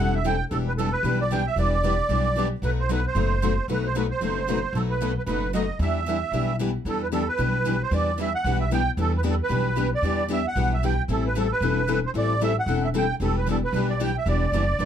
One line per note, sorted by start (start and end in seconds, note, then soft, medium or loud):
0.00 0.39 E1 medium
0.00 0.16 E3 medium
0.00 0.16 G3 medium
0.00 0.17 C4 medium
0.00 0.17 E4 medium
0.00 0.17 A4 medium
0.00 0.14 F#5 medium
0.15 0.26 E5 medium
0.24 0.34 E3 medium
0.24 0.34 G3 medium
0.24 0.35 C4 medium
0.24 0.35 E4 medium
0.24 0.35 A4 medium
0.24 0.44 G5 medium
0.51 0.93 E1 medium
0.51 0.69 E3 medium
0.51 0.69 G3 medium
0.51 0.69 B3 medium
0.51 0.70 D4 medium
0.51 0.70 E4 medium
0.51 0.69 G4 medium
0.51 0.58 A4 medium
0.51 0.70 B4 medium
0.68 0.73 B4 medium
0.78 0.88 E3 medium
0.78 0.88 G3 medium
0.78 0.88 B3 medium
0.78 0.88 D4 medium
0.78 0.88 E4 medium
0.78 0.89 G4 medium
0.78 0.93 A4 medium
0.78 0.88 B4 medium
0.93 1.19 B4 medium
1.03 1.46 B1 medium
1.03 1.22 E3 medium
1.03 1.22 G3 medium
1.03 1.22 B3 medium
1.03 1.22 D4 medium
1.03 1.22 E4 medium
1.03 1.23 G4 medium
1.03 1.22 B4 medium
1.21 1.32 D5 medium
1.31 1.40 E3 medium
1.31 1.40 G3 medium
1.31 1.41 B3 medium
1.31 1.41 D4 medium
1.31 1.41 E4 medium
1.31 1.42 G4 medium
1.31 1.41 B4 medium
1.31 1.46 G5 medium
1.47 1.58 E5 medium
1.56 1.99 E1 medium
1.56 1.75 E3 medium
1.56 1.75 G3 medium
1.56 1.76 B3 medium
1.56 1.75 D4 medium
1.56 1.75 E4 medium
1.56 1.76 G4 medium
1.56 1.75 B4 medium
1.56 2.48 D5 medium
1.83 1.93 E3 medium
1.83 1.93 G3 medium
1.83 1.94 B3 medium
1.83 1.93 D4 medium
1.83 1.94 E4 medium
1.83 1.94 G4 medium
1.83 1.94 B4 medium
2.09 2.51 B1 medium
2.09 2.27 E3 medium
2.09 2.27 G3 medium
2.09 2.28 B3 medium
2.09 2.28 D4 medium
2.09 2.28 E4 medium
2.09 2.28 G4 medium
2.09 2.28 B4 medium
2.36 2.46 E3 medium
2.36 2.46 G3 medium
2.36 2.47 B3 medium
2.36 2.46 D4 medium
2.36 2.46 E4 medium
2.36 2.47 G4 medium
2.36 2.46 B4 medium
2.62 3.04 B1 medium
2.62 2.81 B2 soft
2.62 2.81 F#3 medium
2.62 2.81 A3 medium
2.62 2.81 D#4 medium
2.62 2.81 F#4 medium
2.62 2.81 B4 medium
2.62 2.71 B4 medium
2.80 2.91 C5 medium
2.89 2.99 B2 medium
2.89 2.99 F#3 medium
2.89 2.99 A3 medium
2.89 2.99 D#4 medium
2.89 2.99 F#4 medium
2.89 2.99 B4 medium
2.89 3.05 B4 medium
3.07 3.66 C5 medium
3.15 3.57 F#1 medium
3.15 3.33 B2 medium
3.15 3.34 F#3 medium
3.15 3.34 A3 medium
3.15 3.34 D#4 medium
3.15 3.34 F#4 medium
3.15 3.34 B4 medium
3.42 3.52 B2 medium
3.42 3.52 F#3 medium
3.42 3.52 A3 medium
3.42 3.52 D#4 medium
3.42 3.52 F#4 medium
3.42 3.52 B4 medium
3.68 4.10 B1 medium
3.68 3.86 B2 medium
3.68 3.87 F#3 medium
3.68 3.87 A3 medium
3.68 3.87 D#4 medium
3.68 3.87 F#4 medium
3.68 3.87 B4 medium
3.68 3.85 B4 medium
3.86 3.96 C5 medium
3.95 4.05 B2 medium
3.95 4.05 F#3 medium
3.95 4.05 A3 medium
3.95 4.05 D#4 medium
3.95 4.05 F#4 medium
3.95 4.05 B4 medium
3.95 4.03 B4 medium
4.11 4.77 C5 medium
4.21 4.63 F#1 medium
4.21 4.39 B2 medium
4.21 4.39 F#3 medium
4.21 4.40 A3 medium
4.21 4.39 D#4 medium
4.21 4.40 F#4 medium
4.21 4.40 B4 medium
4.48 4.58 B2 medium
4.48 4.58 F#3 medium
4.48 4.58 A3 medium
4.48 4.58 D#4 medium
4.48 4.58 F#4 medium
4.48 4.58 B4 medium
4.73 5.16 B1 medium
4.73 4.93 B2 medium
4.73 4.93 F#3 medium
4.73 4.93 A3 medium
4.73 4.93 D#4 medium
4.73 4.93 F#4 medium
4.73 4.81 A4 medium
4.73 4.93 B4 medium
4.90 5.14 B4 medium
5.01 5.11 B2 medium
5.01 5.11 F#3 medium
5.01 5.11 A3 medium
5.01 5.11 D#4 medium
5.01 5.11 F#4 medium
5.01 5.11 B4 medium
5.18 5.22 B4 medium
5.26 5.69 F#1 medium
5.26 5.45 B2 medium
5.26 5.45 F#3 medium
5.26 5.45 A3 medium
5.26 5.45 D#4 medium
5.26 5.45 F#4 medium
5.26 5.51 B4 medium
5.26 5.45 B4 medium
5.53 5.63 B2 medium
5.53 5.63 F#3 medium
5.53 5.63 A3 medium
5.53 5.63 D#4 medium
5.53 5.63 F#4 medium
5.53 5.64 B4 medium
5.53 5.79 D#5 medium
5.79 6.22 E2 medium
5.79 5.98 E3 medium
5.79 5.98 G3 medium
5.79 5.99 B3 medium
5.79 5.98 D4 medium
5.79 5.98 E4 medium
5.79 5.99 G4 medium
5.79 5.98 B4 medium
5.79 6.56 E5 medium
6.06 6.16 E3 medium
6.06 6.16 G3 medium
6.06 6.17 B3 medium
6.06 6.16 D4 medium
6.06 6.16 E4 medium
6.06 6.18 G4 medium
6.06 6.16 B4 medium
6.32 6.74 B1 medium
6.32 6.51 E3 medium
6.32 6.51 G3 medium
6.32 6.51 B3 medium
6.32 6.51 D4 medium
6.32 6.51 E4 medium
6.32 6.51 G4 medium
6.32 6.51 B4 medium
6.59 6.69 E3 medium
6.59 6.69 G3 medium
6.59 6.70 B3 medium
6.59 6.70 D4 medium
6.59 6.70 E4 medium
6.59 6.70 G4 medium
6.59 6.70 B4 medium
6.85 7.28 E2 medium
6.85 7.04 E3 medium
6.85 7.04 G3 soft
6.85 7.04 B3 medium
6.85 7.05 D4 medium
6.85 7.04 E4 medium
6.85 7.04 G4 medium
6.85 7.02 A4 medium
6.85 7.05 B4 medium
7.03 7.08 B4 medium
7.12 7.22 E3 medium
7.12 7.23 G3 medium
7.12 7.22 B3 medium
7.12 7.23 D4 medium
7.12 7.23 E4 medium
7.12 7.22 G4 medium
7.12 7.28 A4 medium
7.12 7.23 B4 medium
7.29 7.82 B4 medium
7.38 7.81 B1 medium
7.38 7.57 E3 medium
7.38 7.57 G3 medium
7.38 7.56 B3 medium
7.38 7.57 D4 medium
7.38 7.57 E4 medium
7.38 7.57 G4 medium
7.38 7.57 B4 medium
7.65 7.75 E3 medium
7.65 7.75 G3 medium
7.65 7.75 B3 medium
7.65 7.75 D4 medium
7.65 7.75 E4 medium
7.65 7.76 G4 medium
7.65 7.76 B4 medium
7.83 7.93 C5 medium
7.91 8.33 E2 medium
7.91 8.09 E3 medium
7.91 8.09 G3 medium
7.91 8.10 B3 medium
7.91 8.09 D4 medium
7.91 8.09 E4 medium
7.91 8.11 G4 medium
7.91 8.10 B4 medium
7.91 8.18 D5 medium
8.18 8.28 E3 medium
8.18 8.28 G3 medium
8.18 8.29 B3 medium
8.18 8.28 D4 medium
8.18 8.28 E4 medium
8.18 8.29 G4 medium
8.18 8.28 B4 medium
8.18 8.33 E5 medium
8.35 8.58 F#5 loud
8.44 8.87 B1 medium
8.44 8.63 E3 medium
8.44 8.63 G3 medium
8.44 8.63 B3 medium
8.44 8.63 D4 medium
8.44 8.63 E4 medium
8.44 8.64 G4 medium
8.44 8.63 B4 medium
8.61 8.71 E5 medium
8.71 8.81 E3 medium
8.71 8.81 G3 medium
8.71 8.81 B3 medium
8.71 8.81 D4 medium
8.71 8.81 E4 medium
8.71 8.82 G4 medium
8.71 8.81 B4 medium
8.71 8.91 G5 medium
8.97 9.39 E2 medium
8.97 9.15 E3 medium
8.97 9.15 G3 medium
8.97 9.16 B3 medium
8.97 9.16 D4 medium
8.97 9.16 E4 medium
8.97 9.16 G4 medium
8.97 9.12 A4 medium
8.97 9.16 B4 medium
9.17 9.21 B4 medium
9.24 9.34 E3 medium
9.24 9.34 G3 medium
9.24 9.33 B3 medium
9.24 9.34 D4 medium
9.24 9.34 E4 medium
9.24 9.34 G4 medium
9.24 9.34 B4 medium
9.30 9.35 A4 medium
9.43 9.90 B4 medium
9.49 9.92 B1 medium
9.49 9.68 E3 medium
9.49 9.68 G3 medium
9.49 9.68 B3 medium
9.49 9.69 D4 medium
9.49 9.69 E4 medium
9.49 9.68 G4 medium
9.49 9.69 B4 medium
9.76 9.87 E3 medium
9.76 9.87 G3 medium
9.76 9.86 B3 medium
9.76 9.87 D4 medium
9.76 9.87 E4 medium
9.76 9.87 G4 medium
9.76 9.87 B4 medium
9.95 10.29 D5 medium
10.02 10.45 E2 medium
10.02 10.21 E3 medium
10.02 10.21 G3 medium
10.02 10.22 B3 medium
10.02 10.21 D4 medium
10.02 10.21 E4 medium
10.02 10.22 G4 medium
10.02 10.21 B4 medium
10.28 10.39 E3 medium
10.28 10.39 G3 medium
10.28 10.40 B3 medium
10.28 10.39 D4 medium
10.28 10.39 E4 medium
10.28 10.40 G4 medium
10.28 10.39 B4 medium
10.33 10.46 E5 medium
10.48 10.73 F#5 medium
10.56 10.98 B1 medium
10.56 10.74 E3 medium
10.56 10.74 G3 medium
10.56 10.75 B3 medium
10.56 10.74 D4 medium
10.56 10.74 E4 medium
10.56 10.75 G4 medium
10.56 10.74 B4 medium
10.74 10.84 E5 medium
10.83 10.93 E3 medium
10.83 10.93 G3 medium
10.83 10.93 B3 medium
10.83 10.93 D4 medium
10.83 10.93 E4 medium
10.83 10.93 G4 medium
10.83 10.93 B4 medium
10.83 11.03 G5 medium
11.08 11.51 A1 medium
11.08 11.27 E3 medium
11.08 11.27 G3 soft
11.08 11.27 C4 medium
11.08 11.27 E4 medium
11.08 11.27 A4 medium
11.08 11.24 A4 medium
11.27 11.37 B4 medium
11.35 11.45 E3 medium
11.35 11.45 G3 medium
11.35 11.45 C4 medium
11.35 11.45 E4 medium
11.35 11.45 A4 medium
11.39 11.51 A4 medium
11.52 12.00 B4 medium
11.60 12.03 E1 medium
11.60 11.80 E3 medium
11.60 11.80 G3 medium
11.60 11.80 C4 medium
11.60 11.80 E4 medium
11.60 11.80 A4 medium
11.88 11.98 E3 medium
11.88 11.98 G3 medium
11.88 11.99 C4 medium
11.88 11.98 E4 medium
11.88 11.99 A4 medium
12.06 12.11 C5 medium
12.14 12.56 A1 medium
12.14 12.33 E3 medium
12.14 12.33 G3 medium
12.14 12.33 C4 medium
12.14 12.33 E4 medium
12.14 12.33 A4 medium
12.18 12.41 D5 medium
12.41 12.51 E3 medium
12.41 12.51 G3 medium
12.41 12.51 C4 medium
12.41 12.51 E4 medium
12.41 12.52 A4 medium
12.41 12.56 E5 medium
12.59 12.82 F#5 medium
12.66 13.09 E1 medium
12.66 12.86 E3 medium
12.66 12.86 G3 medium
12.66 12.86 C4 medium
12.66 12.86 E4 medium
12.66 12.86 A4 medium
12.84 12.89 E5 medium
12.94 13.04 E3 medium
12.94 13.04 G3 medium
12.94 13.04 C4 medium
12.94 13.04 E4 medium
12.94 13.04 A4 medium
12.94 13.15 G5 medium
13.20 13.62 E1 medium
13.20 13.38 E3 medium
13.20 13.39 G3 medium
13.20 13.39 B3 medium
13.20 13.39 D4 medium
13.20 13.39 E4 medium
13.20 13.39 G4 medium
13.20 13.35 A4 medium
13.20 13.39 B4 medium
13.38 13.48 B4 medium
13.46 13.57 E3 medium
13.46 13.57 G3 medium
13.46 13.58 B3 medium
13.46 13.57 D4 medium
13.46 13.57 E4 medium
13.46 13.59 G4 medium
13.46 13.57 B4 medium
13.51 13.56 A4 medium
13.64 13.88 B4 medium
13.72 14.15 B1 medium
13.72 13.92 E3 medium
13.72 13.91 G3 medium
13.72 13.93 B3 medium
13.72 13.92 D4 medium
13.72 13.92 E4 medium
13.72 13.92 B4 medium
13.77 13.93 G4 medium
13.90 14.01 D5 medium
14.00 14.10 E3 medium
14.00 14.10 G3 medium
14.00 14.10 B3 medium
14.00 14.10 D4 medium
14.00 14.10 E4 medium
14.00 14.10 G4 medium
14.00 14.11 B4 medium
14.00 14.17 G5 medium
14.18 14.27 E5 medium
14.26 14.47 E1 medium
14.26 14.45 E3 medium
14.26 14.45 G3 medium
14.26 14.44 B3 medium
14.26 14.45 D4 medium
14.26 14.45 E4 medium
14.26 14.45 G4 medium
14.26 14.45 B4 medium
14.26 14.85 D5 medium
14.52 14.75 F#1 medium
14.52 14.63 E3 medium
14.52 14.63 G3 medium
14.52 14.64 B3 medium
14.52 14.63 D4 medium
14.52 14.63 E4 medium
14.52 14.64 G4 medium
14.52 14.63 B4 medium
14.79 14.85 G1 medium
14.79 14.85 E3 medium
14.79 14.85 G3 medium
14.79 14.85 B3 medium
14.79 14.85 D4 medium
14.79 14.85 E4 medium
14.79 14.85 G4 medium
14.79 14.85 B4 medium